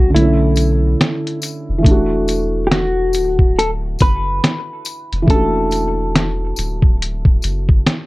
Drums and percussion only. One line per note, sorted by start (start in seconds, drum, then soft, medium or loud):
0.16 closed hi-hat medium
0.56 closed hi-hat medium
0.56 tambourine soft
1.01 snare loud
1.01 closed hi-hat medium
1.27 closed hi-hat soft
1.42 closed hi-hat medium
1.42 tambourine medium
1.85 kick loud
1.85 closed hi-hat medium
2.28 closed hi-hat medium
2.28 tambourine soft
2.72 snare loud
2.72 closed hi-hat medium
3.13 closed hi-hat medium
3.13 tambourine medium
3.39 kick medium
3.59 closed hi-hat medium
3.99 kick medium
3.99 closed hi-hat medium
3.99 tambourine soft
4.44 snare loud
4.44 closed hi-hat medium
4.85 closed hi-hat medium
4.85 tambourine medium
5.13 closed hi-hat soft
5.28 kick loud
5.28 closed hi-hat medium
5.71 closed hi-hat medium
5.71 tambourine soft
6.16 snare loud
6.16 closed hi-hat medium
6.56 closed hi-hat medium
6.56 tambourine medium
6.82 kick medium
7.02 closed hi-hat medium
7.25 kick medium
7.42 closed hi-hat medium
7.42 tambourine soft
7.69 kick medium
7.86 snare medium
7.86 closed hi-hat medium